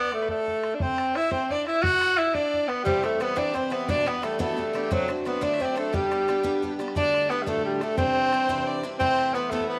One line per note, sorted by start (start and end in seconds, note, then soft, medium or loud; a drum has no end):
0.00 0.12 B3 loud
0.00 0.24 D5 medium
0.12 0.28 A3 medium
0.12 bodhran medium
0.22 0.30 B4 soft
0.28 0.76 A3 loud
0.28 0.73 A4 medium
0.28 bodhran medium
0.48 bodhran soft
0.63 bodhran medium
0.74 0.83 D4 medium
0.80 1.18 C4 loud
0.80 1.12 C5 medium
0.80 bodhran medium
0.98 bodhran medium
1.15 1.32 E4 loud
1.15 1.32 E5 medium
1.15 bodhran medium
1.31 1.53 C4 loud
1.31 1.49 C5 medium
1.31 bodhran medium
1.50 1.66 D4 medium
1.50 1.65 D5 medium
1.50 bodhran soft
1.67 1.84 E4 loud
1.67 1.82 E5 medium
1.67 bodhran medium
1.83 2.19 F#4 loud
1.83 2.19 F#5 loud
1.83 bodhran loud
2.01 bodhran medium
2.18 2.36 E4 loud
2.18 2.33 E5 medium
2.34 2.70 D4 loud
2.34 2.71 D5 medium
2.34 bodhran medium
2.54 bodhran soft
2.68 2.84 B3 loud
2.68 2.88 B4 medium
2.68 bodhran medium
2.84 3.03 C3 medium
2.84 3.02 E3 medium
2.84 3.06 G3 loud
2.84 3.02 G3 medium
2.84 3.03 C4 medium
2.84 3.03 E4 medium
2.84 3.06 G4 medium
2.84 bodhran medium
3.03 3.19 E3 medium
3.03 3.20 G3 medium
3.03 3.23 A3 medium
3.03 3.20 C4 medium
3.03 3.21 E4 medium
3.03 3.20 A4 medium
3.03 bodhran medium
3.20 3.35 E3 medium
3.20 3.35 G3 medium
3.20 3.39 B3 loud
3.20 3.35 C4 medium
3.20 3.36 E4 medium
3.20 3.38 B4 medium
3.20 bodhran medium
3.36 3.54 C3 medium
3.36 3.52 E3 medium
3.36 3.54 G3 medium
3.36 3.54 C4 medium
3.36 3.56 D4 loud
3.36 3.55 E4 medium
3.36 3.56 D5 medium
3.36 bodhran medium
3.54 3.69 E3 medium
3.54 3.70 G3 medium
3.54 3.74 C4 medium
3.54 3.70 C4 medium
3.54 3.71 E4 medium
3.54 3.73 C5 medium
3.54 bodhran soft
3.70 3.87 E3 medium
3.70 3.88 G3 medium
3.70 3.91 B3 medium
3.70 3.88 C4 medium
3.70 3.88 E4 medium
3.70 3.87 B4 medium
3.70 bodhran medium
3.88 4.06 E2 medium
3.88 4.06 B2 medium
3.88 4.04 E3 medium
3.88 4.05 G3 medium
3.88 4.06 B3 medium
3.88 4.06 D4 medium
3.88 4.09 D4 loud
3.88 4.08 D5 medium
3.88 bodhran medium
4.06 4.21 E3 medium
4.06 4.22 G3 soft
4.06 4.22 B3 medium
4.06 4.26 B3 medium
4.06 4.23 D4 medium
4.06 4.24 B4 medium
4.06 bodhran medium
4.22 4.38 E3 medium
4.22 4.39 G3 medium
4.22 4.40 A3 medium
4.22 4.38 B3 medium
4.22 4.39 D4 medium
4.22 4.39 A4 medium
4.22 bodhran medium
4.39 4.57 E2 medium
4.39 4.57 B2 medium
4.39 4.55 E3 medium
4.39 4.56 G3 medium
4.39 4.93 A3 medium
4.39 4.57 B3 medium
4.39 4.57 D4 medium
4.39 4.72 A4 medium
4.39 bodhran medium
4.57 4.72 E3 medium
4.57 4.73 G3 medium
4.57 4.74 B3 medium
4.57 4.74 D4 medium
4.57 bodhran soft
4.73 4.90 E3 medium
4.73 4.91 G3 medium
4.73 4.91 B3 medium
4.73 4.91 D4 medium
4.73 4.92 G4 medium
4.73 bodhran medium
4.90 5.09 D2 medium
4.90 5.09 A2 medium
4.90 5.07 F#3 medium
4.90 5.09 F#3 loud
4.90 5.08 A3 medium
4.90 5.08 C4 medium
4.90 5.09 D4 medium
4.90 5.09 F#4 medium
4.90 bodhran medium
5.08 5.24 F#3 medium
5.08 5.25 A3 medium
5.08 5.25 C4 medium
5.08 5.26 D4 medium
5.08 bodhran medium
5.25 5.41 F#3 medium
5.25 5.41 A3 medium
5.25 5.44 B3 medium
5.25 5.41 C4 medium
5.25 5.41 D4 medium
5.25 5.43 B4 medium
5.25 bodhran medium
5.41 5.60 D2 medium
5.41 5.60 A2 medium
5.41 5.58 F#3 medium
5.41 5.59 A3 medium
5.41 5.59 C4 medium
5.41 5.63 D4 medium
5.41 5.60 D4 medium
5.41 5.55 D5 medium
5.41 bodhran medium
5.53 5.66 E5 medium
5.59 5.74 F#3 medium
5.59 5.76 A3 medium
5.59 5.75 C4 medium
5.59 5.77 C4 medium
5.59 5.76 D4 medium
5.59 bodhran soft
5.65 5.77 D5 medium
5.75 5.92 F#3 medium
5.75 5.93 A3 medium
5.75 5.96 A3 medium
5.75 5.93 C4 medium
5.75 5.93 D4 medium
5.75 5.94 A4 medium
5.75 bodhran medium
5.93 6.10 G3 medium
5.93 6.80 G3 loud
5.93 6.11 B3 medium
5.93 6.11 D4 medium
5.93 6.79 G4 medium
5.93 6.11 G4 medium
5.93 bodhran medium
6.11 6.27 G3 medium
6.11 6.27 B3 medium
6.11 6.28 D4 medium
6.11 6.29 G4 medium
6.11 bodhran medium
6.28 6.42 G3 medium
6.28 6.43 B3 medium
6.28 6.43 D4 medium
6.28 6.43 G4 medium
6.28 bodhran medium
6.43 6.61 G3 medium
6.43 6.62 B3 loud
6.43 6.62 D4 medium
6.43 6.63 G4 medium
6.43 bodhran medium
6.62 6.78 G3 medium
6.62 6.79 B3 medium
6.62 6.79 D4 medium
6.62 6.80 G4 medium
6.62 bodhran soft
6.79 6.95 G3 medium
6.79 6.96 B3 medium
6.79 6.96 D4 medium
6.79 6.97 G4 medium
6.79 bodhran soft
6.88 bodhran medium
6.95 7.30 D2 medium
6.95 7.30 A2 medium
6.95 7.29 D3 medium
6.95 7.29 G3 medium
6.95 7.30 A3 medium
6.95 7.31 D4 loud
6.95 7.31 D4 medium
6.95 7.28 D5 medium
6.95 bodhran medium
7.14 bodhran medium
7.29 7.46 D3 medium
7.29 7.46 G3 medium
7.29 7.47 A3 medium
7.29 7.44 B3 loud
7.29 7.47 D4 medium
7.29 7.43 B4 medium
7.29 bodhran medium
7.42 7.81 D2 medium
7.42 7.49 G3 medium
7.42 7.48 B4 medium
7.47 7.82 A2 medium
7.47 7.80 D3 medium
7.47 7.80 G3 medium
7.47 7.64 A3 loud
7.47 7.82 A3 medium
7.47 7.82 D4 medium
7.47 7.66 A4 medium
7.47 bodhran medium
7.57 bodhran soft
7.65 7.83 G3 medium
7.65 7.82 G4 medium
7.81 7.97 D3 medium
7.81 7.97 G3 medium
7.81 7.97 A3 medium
7.81 7.98 A3 medium
7.81 7.97 D4 medium
7.81 7.99 A4 medium
7.81 bodhran medium
7.97 8.32 C3 medium
7.97 8.31 E3 medium
7.97 8.32 G3 medium
7.97 8.80 C4 loud
7.97 8.33 C4 medium
7.97 8.33 D4 medium
7.97 8.68 C5 medium
7.97 bodhran medium
8.33 8.48 E3 medium
8.33 8.49 G3 medium
8.33 8.49 C4 medium
8.33 8.49 D4 medium
8.33 bodhran medium
8.49 8.84 C3 loud
8.49 8.82 E3 medium
8.49 8.83 G3 medium
8.49 8.83 C4 medium
8.49 8.84 D4 medium
8.49 bodhran medium
8.58 bodhran soft
8.67 8.84 D5 medium
8.83 8.99 E3 medium
8.83 9.01 G3 medium
8.83 9.01 C4 medium
8.83 9.01 D4 medium
8.83 bodhran medium
8.99 9.35 C3 medium
8.99 9.34 E3 medium
8.99 9.35 A3 medium
8.99 9.35 C4 loud
8.99 9.36 E4 medium
8.99 9.36 C5 loud
8.99 bodhran medium
9.19 bodhran medium
9.34 9.51 E3 medium
9.34 9.52 A3 medium
9.34 9.52 B3 loud
9.34 9.51 B3 medium
9.34 9.52 E4 medium
9.34 9.51 B4 medium
9.34 bodhran medium
9.50 9.79 C3 medium
9.50 9.79 E3 medium
9.50 9.68 A3 medium
9.50 9.79 A3 medium
9.50 9.79 B3 medium
9.50 9.79 E4 medium
9.50 9.68 A4 medium
9.50 bodhran medium
9.60 bodhran soft
9.68 9.79 B3 medium
9.68 9.79 B4 medium